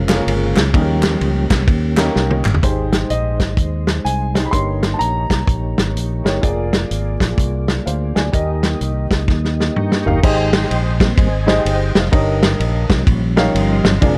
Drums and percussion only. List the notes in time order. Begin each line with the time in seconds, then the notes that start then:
0.09 snare, clap, ride
0.28 ride
0.56 snare, clap, ride
0.74 kick, ride
1.03 snare, clap, ride
1.21 ride
1.50 kick, snare, clap, ride
1.68 kick, ride
1.97 snare, clap, ride
2.16 snare
2.31 high tom
2.45 clap, mid tom
2.54 floor tom
2.63 kick, closed hi-hat
2.93 snare, closed hi-hat
3.10 closed hi-hat
3.40 kick, snare, closed hi-hat
3.57 kick, closed hi-hat
3.87 snare, closed hi-hat
4.06 closed hi-hat
4.35 snare, closed hi-hat
4.53 kick, closed hi-hat
4.83 snare, closed hi-hat
5.01 closed hi-hat
5.30 kick, snare, closed hi-hat
5.47 kick, closed hi-hat
5.78 snare, closed hi-hat
5.97 closed hi-hat
6.26 snare, closed hi-hat
6.43 kick, closed hi-hat
6.73 snare, closed hi-hat
6.91 closed hi-hat
7.20 kick, snare, closed hi-hat
7.38 kick, closed hi-hat
7.68 snare, closed hi-hat
7.87 closed hi-hat
8.16 snare, closed hi-hat
8.34 kick, closed hi-hat
8.63 snare, closed hi-hat
8.81 closed hi-hat
9.11 kick, snare, closed hi-hat
9.28 kick, snare
9.45 snare
9.60 snare
9.76 mid tom
9.92 snare
10.08 floor tom
10.23 kick, crash
10.53 snare, ride
10.71 ride
11.00 kick, snare, ride
11.18 kick, ride
11.48 snare, ride
11.66 ride
11.95 snare, ride
12.13 kick, ride
12.43 snare, ride
12.60 ride
12.90 kick, snare, ride
13.07 kick, ride
13.37 snare, ride
13.55 ride
13.85 snare, ride
14.02 kick, ride